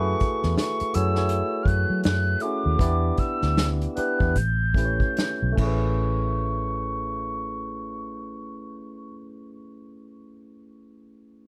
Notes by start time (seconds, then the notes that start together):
Already playing: F#2 A3 E4 F#4 G#4 B4 C#6
0.20 kick, closed hi-hat
0.43 E2, snare
0.58 C#6, snare, closed hi-hat
0.80 muted fingered electric bass stroke, closed hi-hat
0.93 F#2 A3 E4 F#4 G#4 C#5 E6, closed hi-hat
1.14 A3 E4 F#4 G#4 C#5, snare
1.29 closed hi-hat
1.63 F#2 F6, kick
1.67 F#6, closed hi-hat
1.90 F#3
2.03 F#2 F#6, snare, closed hi-hat
2.40 A3 E4 F#4 G#4 D6, closed hi-hat
2.45 C#4
2.66 D#2
2.79 E2 B3 D4 E4 G4 D5, kick, closed hi-hat
3.17 E6, kick, closed hi-hat
3.42 D2, snare
3.57 snare, closed hi-hat
3.81 closed hi-hat
3.96 B3 D4 E4 G4 B4 F#6, muted fingered electric bass stroke, closed hi-hat
4.19 E2 B3 D4 E4 G4 B4, kick
4.36 A1 G6, kick, closed hi-hat
4.74 A3 C#4 E4 G4, kick, closed hi-hat
4.79 B4
4.85 C#5
5.00 kick
5.17 snare, closed hi-hat
5.42 B1
5.52 A3 C#4
5.58 A1 E4 C#6, kick, crash
5.63 G#4 B4